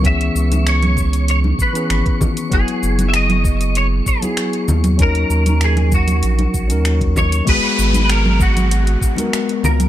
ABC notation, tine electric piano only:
X:1
M:4/4
L:1/16
Q:1/4=97
K:G#m
V:1 name="Tine electric piano"
[E,B,CG]8- [E,B,CG]3 [E,B,CG]4- [E,B,CG] | [F,B,EG]8- [F,B,EG]3 [F,B,EG]4- [F,B,EG] | [F,CDA]8- [F,CDA]3 [F,CDA]4- [F,CDA] | [G,B,FG]8- [G,B,FG]3 [G,B,FA]4- [G,B,FA] |]